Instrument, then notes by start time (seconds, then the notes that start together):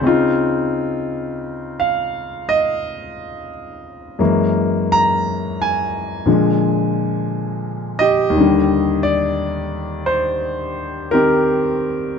grand piano
0.01 C#3 C4 D#4
0.07 F4
1.80 F5
2.49 D#5
4.19 F#2 E3 G#3 A#3
4.92 A#5
5.62 G#5
6.26 A#2 D3 F3 G#3
7.99 G4 D#5
8.30 D#2 D#3
8.37 D3 G3
9.03 D5
10.06 C5
11.11 D#3 C4 G4 A#4